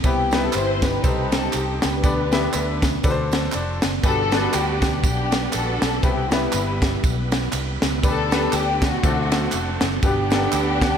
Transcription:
0.04 fingered electric bass C2, upright piano C3 B3 C4 E4 G4 B4, string section B3 E4 G4, kick, ride, tambourine
0.31 upright piano G3 B3 D#4 G4 B4, snare, ride, tambourine
0.39 upright piano E4, string section A4
0.53 fingered electric bass G1, string section C5, clap, ride, tambourine
0.82 string section D#4 G4 B4, kick, snare, ride, tambourine
1.02 fingered electric bass C2, upright piano C3 C4 D#4 G4 A4 C5, kick, ride, tambourine
1.32 string section A4, snare, ride, tambourine
1.53 fingered electric bass C2, string section G4, clap, ride, tambourine
1.82 fingered electric bass C#2, string section D4 G4 B4, snare, ride, tambourine
2.03 fingered electric bass D2, upright piano D3 B3 D4 G4 B4 D5, kick, ride, tambourine
2.32 upright piano B3 D4 G4 B4 E5, snare, ride, tambourine
2.53 fingered electric bass D2, clap, ride, tambourine
2.82 kick, snare, ride, tambourine
3.03 fingered electric bass D2, upright piano D3 C4 D4 F#4 A4 B4, kick, ride, tambourine
3.10 upright piano C5
3.31 snare, ride, tambourine
3.52 fingered electric bass F1, upright piano D5, clap, ride, tambourine
3.82 fingered electric bass F#1, snare, ride, tambourine
4.03 fingered electric bass G1, upright piano G2 B3 D4 F#4 G4 B4, tonewheel organ G3 B3 D4 A4 F#5, string section D4 F#4 A4, kick, ride, tambourine
4.10 tonewheel organ B4
4.32 upright piano G3 B3 D4 F#4 A4, snare, ride, tambourine
4.40 upright piano B4
4.53 fingered electric bass D2, string section B3 D4 G4, clap, ride, tambourine
4.82 kick, snare, ride, tambourine
5.01 fingered electric bass B1, string section B3 D4 G4, kick, ride, tambourine
5.32 snare, ride, tambourine
5.50 string section D4 F#4 A4, clap, ride, tambourine
5.54 fingered electric bass A#1
5.82 fingered electric bass B1, snare, ride, tambourine
6.01 fingered electric bass C2, upright piano C3 B3 C4 E4 G4 B4, tonewheel organ G3 B3 D#4 B4, string section B3 E4 G4, kick, ride, tambourine
6.10 tonewheel organ E4
6.31 upright piano G3 B3 E4 G4 B4, string section G3 B3 E4, snare, ride, tambourine
6.53 fingered electric bass G1, clap, ride, tambourine
6.82 kick, snare, ride, tambourine
7.04 fingered electric bass B1, kick, ride, tambourine
7.32 snare, ride, tambourine
7.52 fingered electric bass C2, clap, ride, tambourine
7.82 fingered electric bass C#2, snare, ride, tambourine
8.02 fingered electric bass D2, upright piano D3 G3 B3 D4 G4 B4, tonewheel organ B3 D4 G4, string section D4, kick, ride, tambourine
8.07 string section A4
8.31 upright piano G3 B3 D4 G4 B4, snare, ride, tambourine
8.53 fingered electric bass D2, string section G4, clap, ride, tambourine
8.82 string section A3 C4 F#4, kick, snare, ride, tambourine
9.03 fingered electric bass D2, upright piano D3 A3 C4 D4 F4 A4, tonewheel organ A3 C4 D4 F#4 C5, kick, ride, tambourine
9.10 upright piano F#4
9.32 snare, ride, tambourine
9.52 fingered electric bass F1, clap, ride, tambourine
9.81 fingered electric bass F#1, snare, ride, tambourine
10.02 fingered electric bass G1, upright piano G2 G3 B3 D4 F#4 G4, tonewheel organ G3 B3 D4 A#4 F#5, string section B3 D4 G4, kick, ride, tambourine
10.09 tonewheel organ B4
10.30 upright piano G3 A#3 D4 A4 F#5, snare, ride, tambourine
10.39 upright piano B3
10.52 fingered electric bass D2, clap, ride, tambourine
10.81 upright piano F#5, kick, snare, ride, tambourine

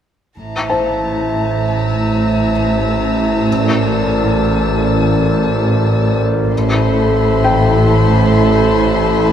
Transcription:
0.37 double bass section A1, synth drone A1, cello section A2, glass harmonica E4 C5 E5, violin section A5 A#5
0.70 felt piano C5 A5
1.62 violin section E6
3.44 glass harmonica A#4 D5
4.29 violin section A5
6.50 synth drone A1, double bass section A1, cello section A2, glass harmonica A4 C5 E5, violin section A5 B5 C6
7.44 felt piano G5

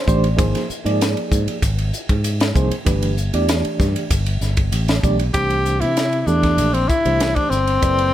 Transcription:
0.06 fingered electric bass A1, reed electric piano E3 A3 D4 G4 C5 D5, kick, hi-hat pedal
0.24 ride
0.36 fingered electric bass G#1, reed electric piano F3 A#3 D#4 G#4 C5, kick, hi-hat pedal, ride
0.55 snare, ride
0.70 muted fingered electric bass stroke, hi-hat pedal
0.84 fingered electric bass G#2, reed electric piano F3 A#3 D#4 G#4 D5, ride
1.01 snare, hi-hat pedal, ride
1.17 ride
1.32 fingered electric bass G#2, kick, hi-hat pedal
1.47 muted fingered electric bass stroke, ride
1.62 fingered electric bass G#1, kick, hi-hat pedal, ride
1.78 ride
1.93 hi-hat pedal
2.09 fingered electric bass G#2, kick, ride
2.24 hi-hat pedal, ride
2.40 snare, ride
2.54 fingered electric bass C2, reed electric piano F3 A#3 D#4 G#4 C5, kick, hi-hat pedal
2.71 muted fingered electric bass stroke, ride
2.85 fingered electric bass G1, reed electric piano E3 A3 D4 G4 B4, kick, hi-hat pedal, ride
3.02 ride
3.17 hi-hat pedal
3.33 fingered electric bass E2, reed electric piano E3 A3 D4 G4 D5, ride
3.49 snare, hi-hat pedal, ride
3.65 muted fingered electric bass stroke, ride
3.80 fingered electric bass G2, kick, snare, hi-hat pedal
3.96 ride
4.11 fingered electric bass G1, kick, hi-hat pedal, ride
4.26 ride
4.41 fingered electric bass G1, snare, hi-hat pedal
4.57 kick, ride
4.72 fingered electric bass A1, hi-hat pedal, ride
4.88 snare, ride
5.03 fingered electric bass B1, reed electric piano E3 A3 D4 G4 D5, kick, hi-hat pedal
5.19 ride
5.33 fingered electric bass C2, reed electric piano E3 A3 D4 G4 C5, tenor saxophone G4, kick, hi-hat pedal, ride
5.50 ride
5.65 hi-hat pedal
5.81 fingered electric bass C3, tenor saxophone E4, ride
5.97 snare, hi-hat pedal, ride
6.13 ride
6.20 tenor saxophone E4
6.27 fingered electric bass E2, reed electric piano E3 A3 D4 G4 A4, tenor saxophone D4, hi-hat pedal
6.43 kick, snare, ride
6.58 fingered electric bass A#1, hi-hat pedal, ride
6.73 tenor saxophone C4, ride
6.88 tenor saxophone E4, kick, hi-hat pedal
7.04 fingered electric bass C2, reed electric piano E3 A3 D4 G4 C5, ride
7.20 snare, hi-hat pedal, ride
7.36 tenor saxophone D4, kick, ride
7.50 fingered electric bass G1, tenor saxophone C4, snare, hi-hat pedal
7.67 ride
7.81 fingered electric bass F#1, reed electric piano F#3 E4 A4 B4 D5, kick, hi-hat pedal, ride
7.99 ride

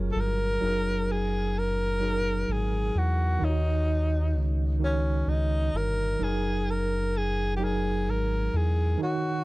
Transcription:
Already playing: analog synth bass F#1, tine electric piano F#3 F4 G#4 A#4
0.12 tenor saxophone A4
0.16 analog synth bass G1, tenor saxophone A#4
0.60 analog synth bass F#1, tine electric piano F#3 D#4 G#4
0.66 tine electric piano A#4
1.11 tenor saxophone G#4
1.58 tenor saxophone A#4
2.00 tine electric piano F#3 D#4 G#4
2.05 tine electric piano A#4
2.48 analog synth bass G#1, tenor saxophone G#4
2.95 analog synth bass E2, tenor saxophone F#4
3.39 analog synth bass D#2, tine electric piano D#3 D#4 F4
3.44 tenor saxophone D#4, tine electric piano C#5
3.49 tine electric piano F#4
4.35 analog synth bass C#2
4.79 tine electric piano D#3 D#4 F#4
4.84 tenor saxophone C#4, tine electric piano C#5
5.27 analog synth bass C#2, tenor saxophone D#4
5.74 analog synth bass G1, tenor saxophone A#4
6.19 analog synth bass F#1, tine electric piano F#3 D#4 G#4
6.23 tenor saxophone G#4, tine electric piano A#4
6.70 tenor saxophone A#4
7.17 tenor saxophone G#4
7.56 tine electric piano F#3 D#4, tenor saxophone G4
7.62 tine electric piano G#4 A#4, tenor saxophone G#4
8.07 analog synth bass G#1, tenor saxophone A#4
8.54 analog synth bass E2, tenor saxophone G#4
8.98 tine electric piano D#3 D#4 F#4
9.03 tenor saxophone F#4, tine electric piano C#5

